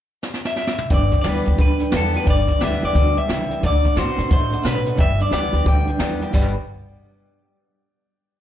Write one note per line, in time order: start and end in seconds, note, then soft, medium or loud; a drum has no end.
0.23 snare medium
0.34 snare medium
0.45 0.94 E5 medium
0.45 snare medium
0.56 snare medium
0.67 snare loud
0.78 mid tom medium
0.90 1.12 G1 medium
0.90 1.56 G2 loud
0.90 1.10 G2 medium
0.90 1.11 D3 medium
0.90 1.04 B4 medium
0.90 1.04 D5 medium
0.90 1.04 G5 loud
0.90 kick loud
0.90 closed hi-hat medium
0.94 1.20 D5 medium
1.12 1.23 G2 medium
1.12 1.24 D3 medium
1.12 1.20 B4 medium
1.12 1.20 D5 medium
1.12 1.20 G5 medium
1.12 kick medium
1.12 closed hi-hat medium
1.22 1.38 D2 medium
1.22 1.44 G2 medium
1.22 1.45 D3 medium
1.22 1.44 E3 medium
1.22 1.45 G3 medium
1.22 1.38 B4 loud
1.22 1.26 D5 medium
1.22 1.38 D5 loud
1.22 1.38 G5 loud
1.22 snare loud
1.22 closed hi-hat medium
1.26 1.46 B3 medium
1.26 1.44 G4 medium
1.26 1.59 B4 medium
1.45 1.55 D2 medium
1.45 1.57 G2 medium
1.45 1.57 E3 medium
1.45 1.59 B3 soft
1.45 1.58 G4 soft
1.45 1.54 B4 medium
1.45 1.54 D5 medium
1.45 1.54 G5 medium
1.45 closed hi-hat medium
1.58 1.80 D2 medium
1.58 1.78 G2 medium
1.58 1.78 D3 medium
1.58 1.92 D3 medium
1.58 1.72 B4 medium
1.58 1.95 B4 medium
1.58 1.72 D5 medium
1.58 1.72 G5 medium
1.58 kick loud
1.58 closed hi-hat medium
1.79 1.91 G2 medium
1.79 1.92 D3 medium
1.79 1.88 B4 medium
1.79 1.88 D5 medium
1.79 1.88 G5 medium
1.79 closed hi-hat medium
1.92 2.15 E2 medium
1.92 2.12 G2 medium
1.92 2.14 D3 medium
1.92 2.13 E3 medium
1.92 2.15 G3 medium
1.92 2.15 B3 medium
1.92 2.05 B4 medium
1.92 2.05 D5 medium
1.92 2.05 G5 medium
1.92 snare loud
1.92 closed hi-hat medium
1.96 2.14 G4 loud
1.96 2.16 A4 medium
2.13 2.26 G2 medium
2.13 2.27 E3 medium
2.13 2.28 B3 soft
2.13 2.27 G4 medium
2.13 2.22 B4 medium
2.13 2.29 B4 medium
2.13 2.22 D5 medium
2.13 2.22 G5 medium
2.13 closed hi-hat medium
2.25 2.49 G1 medium
2.25 2.93 G2 medium
2.25 2.46 G2 medium
2.25 2.46 D3 medium
2.25 2.39 B4 loud
2.25 2.39 D5 medium
2.25 2.39 G5 loud
2.25 kick loud
2.25 closed hi-hat medium
2.30 2.63 D5 medium
2.47 2.60 G2 medium
2.47 2.60 D3 medium
2.47 2.56 B4 medium
2.47 2.56 D5 medium
2.47 2.56 G5 medium
2.47 kick medium
2.47 closed hi-hat medium
2.60 2.75 D2 medium
2.60 2.80 G2 medium
2.60 2.94 D3 medium
2.60 2.80 E3 loud
2.60 2.94 G3 medium
2.60 2.94 B3 loud
2.60 2.95 G4 loud
2.60 2.74 B4 loud
2.60 2.74 D5 loud
2.60 2.84 E5 medium
2.60 2.74 G5 loud
2.60 snare loud
2.60 closed hi-hat medium
2.82 2.91 D2 medium
2.82 2.94 G2 medium
2.82 2.94 E3 medium
2.82 2.90 B4 medium
2.82 2.90 D5 medium
2.82 3.18 D5 loud
2.82 2.90 G5 medium
2.82 closed hi-hat medium
2.95 3.17 D2 loud
2.95 3.15 G2 medium
2.95 3.28 B2 medium
2.95 3.15 D3 loud
2.95 3.08 B4 medium
2.95 3.08 G5 medium
2.95 kick loud
2.95 closed hi-hat medium
3.16 3.28 G2 medium
3.16 3.28 D3 medium
3.16 3.24 B4 medium
3.16 3.24 D5 medium
3.16 3.65 E5 loud
3.16 3.24 G5 medium
3.16 closed hi-hat medium
3.28 3.50 C#2 medium
3.28 3.48 G2 medium
3.28 3.63 C3 medium
3.28 3.49 E3 medium
3.28 3.41 B4 medium
3.28 3.41 D5 medium
3.28 3.41 G5 loud
3.28 snare loud
3.28 closed hi-hat medium
3.50 3.62 G2 medium
3.50 3.62 E3 medium
3.50 3.58 B4 medium
3.50 3.58 D5 medium
3.50 3.58 G5 medium
3.50 closed hi-hat medium
3.63 3.85 D2 medium
3.63 3.82 D3 medium
3.63 3.95 D3 medium
3.63 3.82 A3 medium
3.63 3.76 A4 loud
3.63 3.76 D5 medium
3.63 3.98 D5 medium
3.63 3.76 F#5 loud
3.63 kick loud
3.63 closed hi-hat medium
3.84 3.96 D3 medium
3.84 3.96 A3 medium
3.84 3.92 A4 medium
3.84 3.92 D5 medium
3.84 3.92 F#5 medium
3.84 kick medium
3.84 closed hi-hat medium
3.96 4.10 A2 medium
3.96 4.17 D3 medium
3.96 4.17 A3 medium
3.96 4.17 B3 loud
3.96 4.18 C4 loud
3.96 4.17 F#4 loud
3.96 4.09 A4 loud
3.96 4.31 C5 medium
3.96 4.10 D5 medium
3.96 4.10 F#5 loud
3.96 snare loud
3.96 closed hi-hat medium
4.18 4.26 A2 medium
4.18 4.29 D3 medium
4.18 4.30 B3 medium
4.18 4.31 C4 soft
4.18 4.30 F#4 medium
4.18 4.26 A4 medium
4.18 4.26 D5 medium
4.18 4.26 F#5 medium
4.18 closed hi-hat medium
4.30 4.52 A2 loud
4.30 4.63 B2 medium
4.30 4.50 D3 loud
4.30 4.50 A3 loud
4.30 4.43 A4 medium
4.30 4.67 C5 medium
4.30 4.43 D5 medium
4.30 4.44 E5 medium
4.30 kick loud
4.30 closed hi-hat medium
4.51 4.64 D3 medium
4.51 4.64 A3 medium
4.51 4.59 A4 medium
4.51 4.59 D5 medium
4.51 4.59 F#5 medium
4.51 closed hi-hat medium
4.63 4.97 A2 medium
4.63 5.00 B2 medium
4.63 4.84 D3 medium
4.63 4.84 B3 medium
4.63 4.78 A4 medium
4.63 5.01 B4 loud
4.63 4.78 D5 medium
4.63 4.78 F#5 loud
4.63 snare loud
4.63 closed hi-hat medium
4.86 4.98 D3 medium
4.86 4.98 B3 medium
4.86 4.94 A4 medium
4.86 4.94 D5 medium
4.86 4.94 F#5 medium
4.86 closed hi-hat medium
4.97 5.20 G1 medium
4.97 5.63 G2 medium
4.97 5.18 G2 medium
4.97 5.18 D3 medium
4.97 5.11 B4 medium
4.97 5.11 D5 medium
4.97 5.22 E5 loud
4.97 5.11 G5 loud
4.97 kick loud
4.97 closed hi-hat medium
5.20 5.31 G2 medium
5.20 5.32 D3 medium
5.20 5.27 B4 medium
5.20 5.27 D5 medium
5.20 5.32 D5 loud
5.20 5.27 E5 medium
5.20 closed hi-hat medium
5.31 5.45 D2 medium
5.31 5.52 G2 medium
5.31 5.52 D3 medium
5.31 5.52 E3 loud
5.31 5.53 G3 medium
5.31 5.53 B3 loud
5.31 5.52 G4 medium
5.31 5.45 B4 loud
5.31 5.46 D5 medium
5.31 5.68 D5 medium
5.31 5.45 G5 loud
5.31 snare loud
5.31 closed hi-hat medium
5.53 5.61 D2 medium
5.53 5.65 G2 medium
5.53 5.65 E3 medium
5.53 5.67 B3 soft
5.53 5.66 G4 medium
5.53 5.61 B4 medium
5.53 5.61 D5 medium
5.53 5.61 G5 medium
5.53 closed hi-hat medium
5.66 5.87 D2 loud
5.66 5.86 G2 medium
5.66 5.98 D3 medium
5.66 5.86 D3 medium
5.66 5.79 B4 medium
5.66 5.79 D5 medium
5.66 5.80 G5 medium
5.66 5.99 G5 medium
5.66 kick loud
5.66 closed hi-hat medium
5.87 5.99 G2 medium
5.87 5.99 D3 medium
5.87 5.95 B4 medium
5.87 5.95 D5 medium
5.87 5.95 G5 medium
5.87 closed hi-hat medium
5.99 6.21 E2 medium
5.99 6.20 G2 medium
5.99 6.20 D3 medium
5.99 6.20 E3 medium
5.99 6.20 G3 medium
5.99 6.21 B3 medium
5.99 6.20 G4 medium
5.99 6.12 B4 medium
5.99 6.12 D5 medium
5.99 6.12 G5 loud
5.99 snare loud
5.99 closed hi-hat medium
6.21 6.33 G2 medium
6.21 6.33 E3 medium
6.21 6.34 B3 soft
6.21 6.33 G4 medium
6.21 6.29 B4 medium
6.21 6.29 D5 medium
6.21 6.29 G5 loud
6.21 closed hi-hat medium
6.33 6.53 G1 medium
6.33 6.50 G2 medium
6.33 6.51 B2 medium
6.33 6.51 D3 medium
6.33 6.51 G3 medium
6.33 6.51 B3 medium
6.33 6.51 D4 loud
6.33 6.51 G4 loud
6.33 6.53 B4 medium
6.33 6.52 B4 loud
6.33 6.53 D5 medium
6.33 6.53 G5 medium
6.33 kick loud
6.33 crash medium